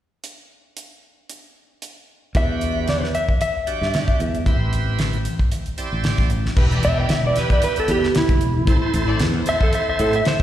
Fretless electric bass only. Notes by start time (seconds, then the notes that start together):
2.35 E2
3.81 G2
4.20 E2
4.46 A1
5.93 A1
6.18 A1
6.57 E1
6.83 E1
7.09 E1
7.88 E2
8.29 G1
8.41 E1
8.68 A1
8.94 A1
9.20 E2
10.00 A2